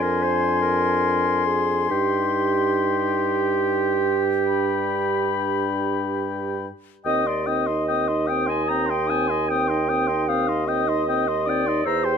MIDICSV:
0, 0, Header, 1, 6, 480
1, 0, Start_track
1, 0, Key_signature, -3, "minor"
1, 0, Tempo, 807537
1, 620, Tempo, 859599
1, 1101, Time_signature, 12, 3, 24, 8
1, 3980, Tempo, 810811
1, 5420, Tempo, 786370
1, 7058, End_track
2, 0, Start_track
2, 0, Title_t, "Flute"
2, 0, Program_c, 0, 73
2, 0, Note_on_c, 0, 84, 69
2, 2376, Note_off_c, 0, 84, 0
2, 2534, Note_on_c, 0, 83, 49
2, 3760, Note_off_c, 0, 83, 0
2, 3976, Note_on_c, 0, 87, 50
2, 4102, Note_on_c, 0, 84, 46
2, 4111, Note_off_c, 0, 87, 0
2, 4219, Note_on_c, 0, 87, 46
2, 4228, Note_off_c, 0, 84, 0
2, 4338, Note_on_c, 0, 84, 46
2, 4347, Note_off_c, 0, 87, 0
2, 4461, Note_off_c, 0, 84, 0
2, 4465, Note_on_c, 0, 87, 43
2, 4584, Note_on_c, 0, 84, 42
2, 4593, Note_off_c, 0, 87, 0
2, 4691, Note_on_c, 0, 87, 47
2, 4700, Note_off_c, 0, 84, 0
2, 4810, Note_on_c, 0, 84, 42
2, 4819, Note_off_c, 0, 87, 0
2, 4922, Note_off_c, 0, 84, 0
2, 4926, Note_on_c, 0, 87, 45
2, 5046, Note_on_c, 0, 84, 44
2, 5055, Note_off_c, 0, 87, 0
2, 5171, Note_on_c, 0, 87, 46
2, 5180, Note_off_c, 0, 84, 0
2, 5292, Note_on_c, 0, 84, 41
2, 5301, Note_off_c, 0, 87, 0
2, 5415, Note_off_c, 0, 84, 0
2, 5421, Note_on_c, 0, 87, 50
2, 5533, Note_on_c, 0, 84, 42
2, 5542, Note_off_c, 0, 87, 0
2, 5665, Note_on_c, 0, 87, 45
2, 5674, Note_off_c, 0, 84, 0
2, 5774, Note_on_c, 0, 84, 45
2, 5783, Note_off_c, 0, 87, 0
2, 5895, Note_off_c, 0, 84, 0
2, 5899, Note_on_c, 0, 87, 48
2, 6028, Note_on_c, 0, 84, 44
2, 6037, Note_off_c, 0, 87, 0
2, 6144, Note_on_c, 0, 87, 52
2, 6153, Note_off_c, 0, 84, 0
2, 6272, Note_on_c, 0, 84, 47
2, 6281, Note_off_c, 0, 87, 0
2, 6386, Note_off_c, 0, 84, 0
2, 6390, Note_on_c, 0, 87, 46
2, 6514, Note_on_c, 0, 84, 46
2, 6523, Note_off_c, 0, 87, 0
2, 6621, Note_on_c, 0, 87, 48
2, 6630, Note_off_c, 0, 84, 0
2, 6746, Note_on_c, 0, 84, 46
2, 6755, Note_off_c, 0, 87, 0
2, 6851, Note_off_c, 0, 84, 0
2, 6855, Note_on_c, 0, 88, 54
2, 6974, Note_on_c, 0, 84, 49
2, 6983, Note_off_c, 0, 88, 0
2, 7058, Note_off_c, 0, 84, 0
2, 7058, End_track
3, 0, Start_track
3, 0, Title_t, "Oboe"
3, 0, Program_c, 1, 68
3, 0, Note_on_c, 1, 80, 61
3, 1101, Note_off_c, 1, 80, 0
3, 1105, Note_on_c, 1, 79, 56
3, 3766, Note_off_c, 1, 79, 0
3, 3971, Note_on_c, 1, 79, 48
3, 4103, Note_on_c, 1, 75, 43
3, 4112, Note_off_c, 1, 79, 0
3, 4219, Note_on_c, 1, 79, 41
3, 4228, Note_off_c, 1, 75, 0
3, 4343, Note_on_c, 1, 75, 42
3, 4351, Note_off_c, 1, 79, 0
3, 4461, Note_off_c, 1, 75, 0
3, 4465, Note_on_c, 1, 79, 41
3, 4584, Note_on_c, 1, 75, 44
3, 4593, Note_off_c, 1, 79, 0
3, 4697, Note_on_c, 1, 79, 43
3, 4706, Note_off_c, 1, 75, 0
3, 4818, Note_on_c, 1, 75, 41
3, 4827, Note_off_c, 1, 79, 0
3, 4940, Note_off_c, 1, 75, 0
3, 4952, Note_on_c, 1, 79, 42
3, 5066, Note_on_c, 1, 75, 42
3, 5075, Note_off_c, 1, 79, 0
3, 5186, Note_on_c, 1, 79, 47
3, 5195, Note_off_c, 1, 75, 0
3, 5306, Note_on_c, 1, 75, 44
3, 5315, Note_off_c, 1, 79, 0
3, 5418, Note_off_c, 1, 75, 0
3, 5422, Note_on_c, 1, 79, 43
3, 5545, Note_on_c, 1, 75, 46
3, 5554, Note_off_c, 1, 79, 0
3, 5660, Note_on_c, 1, 79, 43
3, 5670, Note_off_c, 1, 75, 0
3, 5778, Note_on_c, 1, 75, 48
3, 5787, Note_off_c, 1, 79, 0
3, 5898, Note_off_c, 1, 75, 0
3, 5901, Note_on_c, 1, 79, 44
3, 6019, Note_on_c, 1, 75, 49
3, 6028, Note_off_c, 1, 79, 0
3, 6145, Note_on_c, 1, 79, 47
3, 6154, Note_off_c, 1, 75, 0
3, 6268, Note_on_c, 1, 75, 49
3, 6277, Note_off_c, 1, 79, 0
3, 6388, Note_off_c, 1, 75, 0
3, 6392, Note_on_c, 1, 79, 50
3, 6512, Note_on_c, 1, 75, 44
3, 6521, Note_off_c, 1, 79, 0
3, 6639, Note_on_c, 1, 79, 47
3, 6648, Note_off_c, 1, 75, 0
3, 6757, Note_on_c, 1, 75, 45
3, 6766, Note_off_c, 1, 79, 0
3, 6865, Note_off_c, 1, 75, 0
3, 6868, Note_on_c, 1, 82, 47
3, 6984, Note_on_c, 1, 79, 50
3, 6993, Note_off_c, 1, 82, 0
3, 7058, Note_off_c, 1, 79, 0
3, 7058, End_track
4, 0, Start_track
4, 0, Title_t, "Clarinet"
4, 0, Program_c, 2, 71
4, 15, Note_on_c, 2, 70, 74
4, 134, Note_on_c, 2, 72, 79
4, 143, Note_off_c, 2, 70, 0
4, 362, Note_off_c, 2, 72, 0
4, 365, Note_on_c, 2, 70, 82
4, 852, Note_on_c, 2, 68, 73
4, 860, Note_off_c, 2, 70, 0
4, 1093, Note_off_c, 2, 68, 0
4, 1096, Note_on_c, 2, 67, 83
4, 3713, Note_off_c, 2, 67, 0
4, 3976, Note_on_c, 2, 75, 85
4, 4109, Note_on_c, 2, 74, 69
4, 4118, Note_off_c, 2, 75, 0
4, 4230, Note_on_c, 2, 75, 74
4, 4239, Note_off_c, 2, 74, 0
4, 4707, Note_on_c, 2, 79, 72
4, 4715, Note_off_c, 2, 75, 0
4, 4829, Note_on_c, 2, 80, 68
4, 4838, Note_off_c, 2, 79, 0
4, 4944, Note_on_c, 2, 82, 73
4, 4953, Note_off_c, 2, 80, 0
4, 5072, Note_on_c, 2, 79, 69
4, 5081, Note_off_c, 2, 82, 0
4, 5185, Note_on_c, 2, 80, 68
4, 5194, Note_off_c, 2, 79, 0
4, 5417, Note_on_c, 2, 79, 76
4, 5426, Note_off_c, 2, 80, 0
4, 5905, Note_on_c, 2, 77, 65
4, 5914, Note_off_c, 2, 79, 0
4, 6136, Note_off_c, 2, 77, 0
4, 6140, Note_on_c, 2, 75, 80
4, 6628, Note_on_c, 2, 74, 82
4, 6637, Note_off_c, 2, 75, 0
4, 6866, Note_on_c, 2, 72, 88
4, 6875, Note_off_c, 2, 74, 0
4, 7058, Note_off_c, 2, 72, 0
4, 7058, End_track
5, 0, Start_track
5, 0, Title_t, "French horn"
5, 0, Program_c, 3, 60
5, 0, Note_on_c, 3, 62, 53
5, 1098, Note_on_c, 3, 63, 53
5, 1106, Note_off_c, 3, 62, 0
5, 2373, Note_off_c, 3, 63, 0
5, 2538, Note_on_c, 3, 62, 46
5, 3762, Note_off_c, 3, 62, 0
5, 3977, Note_on_c, 3, 60, 50
5, 4099, Note_on_c, 3, 63, 49
5, 4108, Note_off_c, 3, 60, 0
5, 4227, Note_on_c, 3, 60, 46
5, 4236, Note_off_c, 3, 63, 0
5, 4350, Note_on_c, 3, 63, 45
5, 4359, Note_off_c, 3, 60, 0
5, 4463, Note_off_c, 3, 63, 0
5, 4467, Note_on_c, 3, 60, 41
5, 4591, Note_on_c, 3, 63, 41
5, 4599, Note_off_c, 3, 60, 0
5, 4706, Note_on_c, 3, 60, 42
5, 4715, Note_off_c, 3, 63, 0
5, 4828, Note_on_c, 3, 63, 39
5, 4837, Note_off_c, 3, 60, 0
5, 4945, Note_off_c, 3, 63, 0
5, 4949, Note_on_c, 3, 60, 42
5, 5068, Note_on_c, 3, 63, 39
5, 5077, Note_off_c, 3, 60, 0
5, 5187, Note_on_c, 3, 60, 46
5, 5196, Note_off_c, 3, 63, 0
5, 5302, Note_on_c, 3, 63, 41
5, 5311, Note_off_c, 3, 60, 0
5, 5416, Note_off_c, 3, 63, 0
5, 5420, Note_on_c, 3, 60, 47
5, 5544, Note_on_c, 3, 63, 42
5, 5553, Note_off_c, 3, 60, 0
5, 5666, Note_on_c, 3, 60, 48
5, 5675, Note_off_c, 3, 63, 0
5, 5785, Note_on_c, 3, 63, 46
5, 5795, Note_off_c, 3, 60, 0
5, 5898, Note_off_c, 3, 63, 0
5, 5902, Note_on_c, 3, 60, 50
5, 6024, Note_on_c, 3, 63, 41
5, 6034, Note_off_c, 3, 60, 0
5, 6145, Note_on_c, 3, 60, 44
5, 6154, Note_off_c, 3, 63, 0
5, 6264, Note_on_c, 3, 63, 50
5, 6273, Note_off_c, 3, 60, 0
5, 6381, Note_off_c, 3, 63, 0
5, 6384, Note_on_c, 3, 60, 46
5, 6507, Note_on_c, 3, 63, 44
5, 6517, Note_off_c, 3, 60, 0
5, 6629, Note_on_c, 3, 60, 48
5, 6638, Note_off_c, 3, 63, 0
5, 6745, Note_on_c, 3, 63, 48
5, 6754, Note_off_c, 3, 60, 0
5, 6858, Note_off_c, 3, 63, 0
5, 6862, Note_on_c, 3, 64, 56
5, 6981, Note_on_c, 3, 67, 51
5, 6990, Note_off_c, 3, 64, 0
5, 7058, Note_off_c, 3, 67, 0
5, 7058, End_track
6, 0, Start_track
6, 0, Title_t, "Bassoon"
6, 0, Program_c, 4, 70
6, 0, Note_on_c, 4, 41, 67
6, 1095, Note_off_c, 4, 41, 0
6, 1099, Note_on_c, 4, 43, 55
6, 3763, Note_off_c, 4, 43, 0
6, 3977, Note_on_c, 4, 39, 60
6, 6841, Note_off_c, 4, 39, 0
6, 6861, Note_on_c, 4, 40, 64
6, 7058, Note_off_c, 4, 40, 0
6, 7058, End_track
0, 0, End_of_file